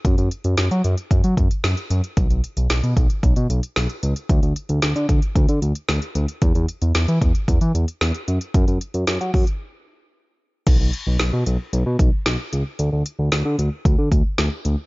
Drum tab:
CC |----------------|----------------|----------------|----------------|
HH |xxxxxxxxxxxxxxxx|xxxxxxxxxxxxxxxx|xxxxxxxxxxxxxxxx|xxxxxxxxxxxxxxxx|
SD |----o-------o---|----o-------o---|----o-------o---|----o-------o---|
BD |o-------o-o-----|o-----o-o-------|o-----o-o-------|o-----o-o-------|

CC |----------------|x---------------|----------------|
HH |xxxxxxox--------|x-x-x-x-x-x-x-x-|x-x-x-x-x-x-x-x-|
SD |----o-----------|----o-------o---|----o-------o---|
BD |o-----o---------|o---------o-----|--------o-o-----|